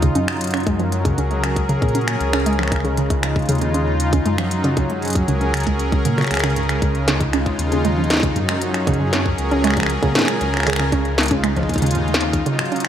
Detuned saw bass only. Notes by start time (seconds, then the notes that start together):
Already playing: D#2
0.15 F#2
1.18 C#2
1.82 A#2
2.20 C#2
3.49 D#2
4.26 F#2
5.28 C#2
5.54 C#2
6.05 A#2
6.31 C#2
7.59 D#2
8.36 F#2
9.38 C#2
10.03 A#2
10.41 C#2
11.69 D#2